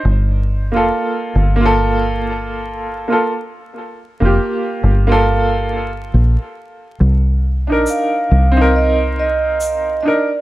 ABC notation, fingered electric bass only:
X:1
M:4/4
L:1/16
Q:"Swing 16ths" 1/4=69
K:Gm
V:1 name="Fingered electric bass" clef=bass
G,,,3 F,,, z2 G,,,8 z2 | z3 F,,, z2 G,,,6 B,,, z3 | C,,3 B,,, z2 C,,8 z2 |]